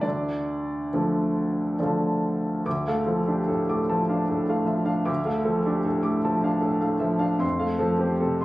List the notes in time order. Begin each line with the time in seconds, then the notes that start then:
0.01 D2 D4 D5
0.93 D3 F3 A3
1.79 D3 F3 A3 D5
1.83 F5 A5
2.66 D2 D6
2.88 A3 F5
3.06 F3 A4
3.28 D4 G4
3.48 A2 A4
3.69 A3 D6
3.89 F3 A5
4.09 D4 F5
4.29 A2 A4
4.49 A3 F5
4.66 F3 E5
4.85 D4 F5
5.05 D2 D6
5.25 A3 F5
5.45 F3 A4
5.66 D4 G4
5.85 A2 A4
6.03 A3 D6
6.25 F3 A5
6.44 D4 F5
6.61 A2 A4
6.81 A3 F5
7.00 F3 E5
7.19 D4 F5
7.39 F2 C6
7.59 A3 F5
7.79 F3 A4
7.99 C4 G4
8.20 C3 A4
8.41 A3 C6